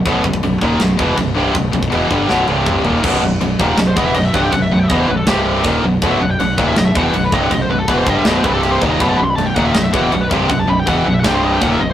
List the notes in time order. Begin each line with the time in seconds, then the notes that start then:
Already playing: B3 F#4 B4 D#5
0.06 B0 B1 F#2 B2, kick, crash
0.24 B0 B1 F#2, kick
0.34 kick
0.43 B0 B1 F#2, crash
0.61 D#1 D#2 A#2 D#3, kick
0.80 B0 B1 F#2, snare, crash
0.99 E1 E2 B2 E3, kick
1.18 B0 B1 F#2, kick, crash
1.36 C1 C2 G2 C3
1.55 B0 B1 F#2, kick, crash
1.73 B0 B1 F#2, kick
1.83 kick
1.92 E1 E2 B2 E3, crash
2.11 G1 G2 D3 G3, kick
2.29 B0 B1 F#2 B2, snare
2.47 C1 C2 G2 C3 G3 C4 C5, high tom
2.66 kick, mid tom
2.84 D#1 D#2 A#2 D#3 B3 F#4 B4 D#5, floor tom
3.02 B0 B1 F#2 B2 B3 F#4 B4 D#5, kick, crash
3.22 B0 B1 F#2
3.41 B0 B1 F#2, crash
3.59 D#1 D#2 A#2 D#3, kick
3.78 B0 B1 F#2, snare, crash
3.88 C5
3.96 E1 E2 B2 E3 D#5, kick
4.05 E5
4.14 B0 B1 F#2 D#5, crash
4.25 E5
4.33 C1 C2 G2 C3 F#5, kick
4.43 G5
4.52 B0 B1 F#2 F#5, kick, crash
4.62 E5
4.71 B0 B1 F#2 F#5
4.79 G5
4.83 E5
4.89 E1 E2 B2 E3 D#5, kick, crash
4.99 C5
5.08 B0 B1 F#2 B4
5.17 A4
5.27 C1 C2 G2 C3 G3 C4 G4 C5, kick, snare, crash
5.64 D#1 D#2 A#2 D#3 B3 F#4 B4 D#5, kick, crash
5.84 B0 B1 F#2
6.02 B0 B1 F#2 B2, kick, crash
6.11 E5
6.20 B0 B1 F#2 F#5
6.30 G5
6.39 B0 B1 F#2 F#5, crash
6.58 D#1 D#2 A#2 D#3, kick
6.67 E5
6.76 B0 B1 F#2 D#5, snare, crash
6.86 E5
6.95 E1 E2 B2 E3 F#5, kick
7.04 G5
7.14 B0 B1 F#2 F#5, crash
7.24 B4
7.32 C1 C2 G2 C3 D#5, kick
7.43 F#5
7.51 B0 B1 F#2 D#5, kick, crash
7.62 C5
7.70 B0 B1 F#2 B4
7.80 A4
7.88 E1 E2 B2 E3 B4, kick, crash
7.98 C5
8.07 G1 G2 D3 G3 D#5, kick
8.18 E5
8.25 B0 B1 F#2 B2 D#5, snare, crash
8.37 C5
8.44 C1 C2 G2 C3 G3 C4 B4 C5, kick
8.54 A4
8.63 G4, crash
8.71 C5
8.78 D#1 D#2 B3 F#4 B4 D#5, kick
8.82 A#2 D#3
8.91 A#5
9.00 B0 B1 F#2 B2 B5, kick, crash
9.09 A5
9.18 B0 B1 F#2 B5
9.23 C6
9.31 B5
9.36 B0 B1 F#2 A5, crash
9.46 G5
9.55 D#1 D#2 A#2 D#3 F#5, kick
9.65 E5
9.74 B0 B1 F#2 D#5, snare, crash
9.84 E5
9.93 E1 E2 B2 E3 F#5, kick
10.03 G5
10.12 B0 B1 F#2 F#5, crash
10.21 B4
10.31 C1 C2 G2 C3, kick
10.49 B0 B1 F#2 F#5, kick, crash
10.60 A5
10.68 B0 B1 F#2 B5
10.80 G5
10.87 E1 E2 B2 E3 F#5, kick, crash
10.98 G5
11.05 B0 B1 F#2 F#5
11.14 E5
11.19 C2 C3 C5 F#5
11.23 C1 G2 C3 G3 C4 G5, kick, snare, crash
11.34 C5
11.45 D#5
11.52 G5
11.60 D#1 D#2 A#2 D#3 B3 F#4 B4 D#5 F#5, kick, crash
11.72 E5
11.80 B0 B1 F#2 D#5